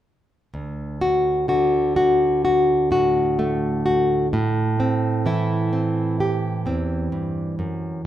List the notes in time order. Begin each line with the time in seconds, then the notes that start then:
0.54 D2
1.01 F#4
1.48 D3 F#4
1.96 F#4
2.45 F#4
2.91 A2 F#4
3.39 A3
3.86 F#4
4.33 A2
4.80 C4
5.26 E3 E4
5.73 C4
6.20 G4
6.66 E2 C4
7.12 G2
7.59 F#2